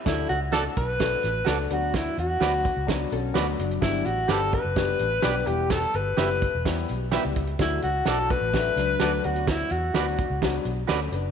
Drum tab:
HH |xxx-x-x-x-x-x-x-|x-x-x-x-x-x-x-xx|xxx-x-x-x-x-x-x-|xxx-x-x-x-x-x-xx|
SD |o---o---o-o-o---|o---o---o---o---|o---o---o---o---|o---o---o---o---|
BD |o-----o-o-------|o-----o-o-------|o-----o-o-------|o-----o-o-----o-|

HH |x-x-x-x-x-x-x-xx|xxx-x-x-x-x-x-x-|
SD |o---o---o-o-o---|o---o---o---o---|
BD |o-----o-o-------|o-----o-o-------|